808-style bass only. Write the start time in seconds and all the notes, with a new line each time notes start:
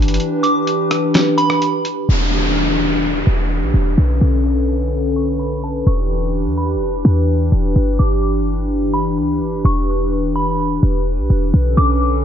Already playing: G1
2.09 E1
3.27 E1
3.62 B1
3.74 E1
3.98 B1
4.21 B1
5.87 E1
6.46 E2
6.75 E1
7.05 E2
7.52 E1
7.76 G1
8.00 G1
9.18 D2
9.41 G1
9.65 E1
10.83 E1
11.18 B1
11.30 E1
11.54 B1
11.77 B1